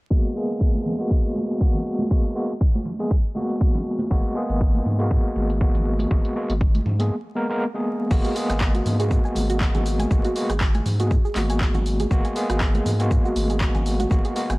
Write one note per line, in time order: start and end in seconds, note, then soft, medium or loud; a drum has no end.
0.10 0.33 G#3 medium
0.10 0.33 A#3 medium
0.10 0.33 B3 medium
0.10 0.33 F#4 medium
0.10 kick loud
0.25 closed hi-hat soft
0.35 0.96 G#3 medium
0.35 0.96 A#3 medium
0.35 0.97 B3 medium
0.35 0.97 G#4 medium
0.50 closed hi-hat medium
0.61 kick loud
0.75 closed hi-hat soft
0.75 high conga medium
0.86 low conga medium
0.99 1.58 G#3 medium
0.99 1.58 A#3 medium
0.99 1.58 B3 medium
0.99 1.59 F#4 medium
0.99 closed hi-hat medium
1.11 kick loud
1.36 high conga medium
1.50 closed hi-hat medium
1.60 2.08 G#3 medium
1.60 2.08 A#3 medium
1.60 2.08 B3 medium
1.60 2.08 F#4 medium
1.60 kick loud
1.74 closed hi-hat soft
1.74 low conga medium
1.99 closed hi-hat medium
1.99 high conga medium
2.10 2.33 G#3 medium
2.10 2.33 A#3 medium
2.10 2.33 B3 medium
2.10 2.33 F#4 medium
2.10 kick loud
2.25 closed hi-hat soft
2.35 2.52 G#3 medium
2.35 2.52 A#3 medium
2.35 2.52 B3 medium
2.35 2.52 F#4 medium
2.50 closed hi-hat medium
2.61 kick loud
2.75 closed hi-hat soft
2.75 high conga medium
2.85 low conga medium
2.99 3.13 G#3 medium
2.99 3.14 A#3 medium
2.99 3.14 B3 medium
2.99 3.14 G#4 medium
2.99 closed hi-hat medium
3.11 kick loud
3.35 4.08 G#3 medium
3.35 4.08 A#3 medium
3.35 4.08 B3 medium
3.35 4.09 F#4 medium
3.35 high conga medium
3.50 closed hi-hat medium
3.61 kick loud
3.75 closed hi-hat soft
3.75 low conga medium
3.99 closed hi-hat medium
3.99 high conga medium
4.10 4.21 G#1 medium
4.10 4.33 G#3 medium
4.10 4.33 A#3 medium
4.10 4.33 B3 medium
4.10 4.33 F#4 medium
4.10 kick loud
4.25 closed hi-hat soft
4.35 4.96 G#3 medium
4.35 4.96 A#3 medium
4.35 4.97 B3 medium
4.35 4.97 G#4 medium
4.50 4.81 G#1 medium
4.50 closed hi-hat medium
4.61 kick loud
4.74 closed hi-hat soft
4.74 high conga medium
4.86 5.18 G#2 medium
4.86 low conga medium
4.99 5.58 G#3 medium
4.99 5.58 A#3 medium
4.99 5.58 B3 medium
4.99 5.59 F#4 medium
4.99 closed hi-hat medium
5.11 kick loud
5.36 5.68 G#1 medium
5.36 high conga medium
5.50 closed hi-hat medium
5.60 6.08 G#3 medium
5.60 6.08 A#3 medium
5.60 6.08 B3 medium
5.60 6.08 F#4 medium
5.60 kick loud
5.75 6.06 G#1 medium
5.75 closed hi-hat soft
5.75 low conga medium
5.99 closed hi-hat medium
5.99 high conga loud
6.11 6.21 G#1 medium
6.11 6.33 G#3 medium
6.11 6.33 A#3 medium
6.11 6.33 B3 medium
6.11 6.33 F#4 medium
6.11 kick loud
6.25 closed hi-hat soft
6.36 6.52 G#3 medium
6.36 6.52 A#3 medium
6.36 6.52 B3 medium
6.36 6.52 F#4 medium
6.50 6.81 G#1 medium
6.50 closed hi-hat medium
6.61 kick loud
6.75 closed hi-hat soft
6.75 high conga medium
6.86 7.11 G#2 medium
6.86 low conga medium
6.99 7.14 G#3 medium
6.99 7.14 A#3 medium
6.99 7.14 B3 medium
6.99 7.14 G#4 medium
6.99 closed hi-hat medium
7.35 7.46 G#3 medium
7.35 7.46 A#3 medium
7.35 7.47 B3 medium
7.35 7.47 A#4 medium
7.49 7.64 G#3 medium
7.49 7.64 A#3 medium
7.49 7.64 B3 medium
7.49 7.64 A#4 loud
7.74 8.08 G#3 medium
7.74 8.08 A#3 medium
7.74 8.08 B3 medium
7.74 8.09 G#4 medium
8.11 8.21 G#1 loud
8.11 8.33 G#3 medium
8.11 8.33 A#3 medium
8.11 8.33 B3 medium
8.11 8.33 F#4 loud
8.11 kick loud
8.11 crash medium
8.11 shaker soft
8.25 8.31 G#4 medium
8.25 closed hi-hat medium
8.25 shaker soft
8.35 8.96 G#3 medium
8.35 8.96 A#3 medium
8.35 8.97 B3 medium
8.35 8.97 G#4 loud
8.35 open hi-hat loud
8.35 shaker medium
8.50 8.81 G#1 medium
8.50 8.56 G#5 medium
8.50 cross-stick medium
8.50 closed hi-hat medium
8.50 shaker soft
8.61 kick loud
8.61 clap loud
8.61 shaker soft
8.75 8.85 F#4 loud
8.75 closed hi-hat medium
8.75 high conga medium
8.75 shaker soft
8.86 9.18 G#2 medium
8.86 open hi-hat loud
8.86 low conga medium
8.86 shaker medium
8.99 9.58 G#3 medium
8.99 9.58 A#3 medium
8.99 9.58 B3 medium
8.99 9.59 F#4 medium
8.99 9.06 G#4 medium
8.99 closed hi-hat medium
8.99 shaker soft
9.11 kick loud
9.11 shaker soft
9.25 9.31 G#5 medium
9.25 shaker soft
9.35 9.68 G#1 medium
9.35 open hi-hat loud
9.35 high conga medium
9.35 shaker medium
9.50 9.60 F#4 loud
9.50 closed hi-hat medium
9.50 shaker soft
9.60 10.08 G#3 medium
9.60 10.08 A#3 medium
9.60 10.08 B3 medium
9.60 10.08 F#4 medium
9.60 kick loud
9.60 clap loud
9.60 shaker soft
9.75 10.06 G#1 medium
9.75 9.81 G#4 medium
9.75 closed hi-hat soft
9.75 low conga medium
9.75 shaker soft
9.86 open hi-hat loud
9.86 shaker medium
9.99 10.06 G#5 medium
9.99 closed hi-hat medium
9.99 high conga medium
9.99 shaker soft
10.10 10.21 G#1 loud
10.10 10.33 G#3 medium
10.10 10.33 A#3 medium
10.10 10.33 B3 medium
10.10 10.33 F#4 medium
10.10 kick loud
10.10 shaker soft
10.25 10.35 F#4 loud
10.25 closed hi-hat soft
10.25 shaker soft
10.35 10.52 G#3 medium
10.35 10.52 A#3 medium
10.35 10.52 B3 medium
10.35 10.52 F#4 medium
10.35 open hi-hat loud
10.35 shaker medium
10.50 10.81 G#1 medium
10.50 10.56 G#4 medium
10.50 cross-stick medium
10.50 closed hi-hat medium
10.50 shaker soft
10.61 kick loud
10.61 clap loud
10.61 shaker soft
10.75 10.81 G#5 medium
10.75 closed hi-hat medium
10.75 high conga medium
10.75 shaker soft
10.86 11.18 G#2 medium
10.86 open hi-hat loud
10.86 low conga medium
10.86 shaker medium
10.99 11.13 G#3 medium
10.99 11.14 A#3 medium
10.99 11.14 B3 medium
10.99 11.10 F#4 loud
10.99 11.14 G#4 medium
10.99 closed hi-hat medium
10.99 shaker soft
11.11 kick loud
11.11 shaker soft
11.25 11.31 G#4 medium
11.25 shaker soft
11.35 11.68 G#1 medium
11.35 12.08 G#3 medium
11.35 12.08 A#3 medium
11.35 12.08 B3 medium
11.35 12.09 F#4 medium
11.35 clap medium
11.35 open hi-hat loud
11.35 high conga medium
11.35 shaker medium
11.50 11.56 G#5 medium
11.50 closed hi-hat medium
11.50 shaker soft
11.61 kick loud
11.61 clap loud
11.61 shaker soft
11.74 12.06 G#1 medium
11.74 11.85 F#4 loud
11.74 closed hi-hat soft
11.74 low conga medium
11.74 shaker soft
11.86 open hi-hat loud
11.86 shaker medium
12.00 12.06 G#4 medium
12.00 closed hi-hat medium
12.00 high conga medium
12.00 shaker soft
12.10 12.21 G#1 loud
12.10 12.33 G#3 medium
12.10 12.33 A#3 medium
12.10 12.33 B3 medium
12.10 12.33 F#4 loud
12.10 kick loud
12.10 shaker soft
12.25 12.31 G#5 medium
12.25 closed hi-hat soft
12.25 shaker soft
12.35 12.96 G#3 medium
12.35 12.96 A#3 medium
12.35 12.97 B3 medium
12.35 12.97 G#4 loud
12.35 open hi-hat loud
12.35 shaker medium
12.50 12.81 G#1 medium
12.50 12.60 F#4 loud
12.50 cross-stick medium
12.50 closed hi-hat medium
12.50 shaker soft
12.61 kick loud
12.61 clap loud
12.61 shaker soft
12.74 12.81 G#4 medium
12.74 closed hi-hat soft
12.74 high conga medium
12.74 shaker soft
12.86 13.18 G#2 medium
12.86 open hi-hat loud
12.86 low conga medium
12.86 shaker medium
12.99 13.58 G#3 medium
12.99 13.58 A#3 medium
12.99 13.58 B3 medium
12.99 13.59 F#4 medium
12.99 13.06 G#5 medium
12.99 closed hi-hat medium
12.99 shaker soft
13.11 kick loud
13.11 shaker soft
13.25 13.35 F#4 loud
13.25 shaker soft
13.36 13.68 G#1 medium
13.36 open hi-hat loud
13.36 high conga medium
13.36 shaker medium
13.50 13.56 G#4 medium
13.50 closed hi-hat medium
13.50 shaker soft
13.60 14.08 G#3 medium
13.60 14.08 A#3 medium
13.60 14.08 F#4 medium
13.60 kick loud
13.60 clap loud
13.60 shaker soft
13.75 14.06 G#1 medium
13.75 13.81 G#5 medium
13.75 closed hi-hat soft
13.75 low conga medium
13.75 shaker soft
13.86 open hi-hat loud
13.86 shaker medium
14.00 14.10 F#4 loud
14.00 closed hi-hat medium
14.00 high conga loud
14.00 shaker soft
14.10 14.21 G#1 medium
14.10 14.33 G#3 medium
14.10 14.33 A#3 medium
14.10 14.33 B3 medium
14.10 14.33 F#4 medium
14.10 kick loud
14.10 shaker soft
14.25 14.31 G#4 medium
14.25 closed hi-hat soft
14.25 shaker soft
14.35 14.52 G#3 medium
14.35 14.52 A#3 medium
14.35 14.52 B3 medium
14.35 14.52 F#4 medium
14.35 open hi-hat loud
14.35 shaker medium
14.50 14.59 G#1 medium
14.50 14.56 G#5 medium
14.50 cross-stick medium
14.50 closed hi-hat medium
14.50 shaker soft